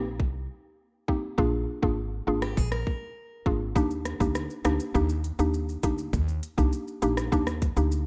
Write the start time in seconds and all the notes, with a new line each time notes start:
Already playing: A#1
0.20 C2, kick
1.08 A#3 C4 D#4 G4, kick
1.38 A#1 A#3 D4 F4 G#4, kick
1.82 G#1 A#3 D4 F4 G#4, kick
2.27 G#1 A#3 D4 F4 G#4
2.42 G4, cross-stick
2.57 A#1 G#4, kick
2.72 A#4, cross-stick
2.87 kick
3.46 G#1 A#3 D4 F4 G#4, kick
3.75 D#2 A#3 D4 D#4 G4, kick, shaker
3.91 shaker
4.05 cross-stick, closed hi-hat, shaker
4.20 D2 A#3 D4 D#4 G4, kick, shaker
4.35 cross-stick, shaker
4.50 shaker
4.65 D2 A#3 D4 D#4 G4, cross-stick, closed hi-hat, shaker
4.80 shaker
4.94 D#2 A#3 D4 D#4 G4, kick, shaker
5.09 shaker
5.24 closed hi-hat, shaker
5.39 D#2 A#3 D4 D#4 G4, shaker
5.54 shaker
5.69 shaker
5.83 D2 A#3 D4 D#4 G4, kick, closed hi-hat, shaker
5.98 shaker
6.13 D#2, kick, shaker
6.28 shaker
6.43 closed hi-hat, shaker
6.58 C2 A#3 D4 D#4 G4, kick, shaker
6.72 shaker
6.88 shaker
7.02 A#1 A#3 D4 D#4 G4, closed hi-hat, shaker
7.17 cross-stick, shaker
7.32 D#2 A#3 D4 D#4 G4, kick, shaker
7.47 cross-stick, shaker
7.62 kick, closed hi-hat, shaker
7.76 D2 A#3 D4 D#4 G4, shaker
7.92 shaker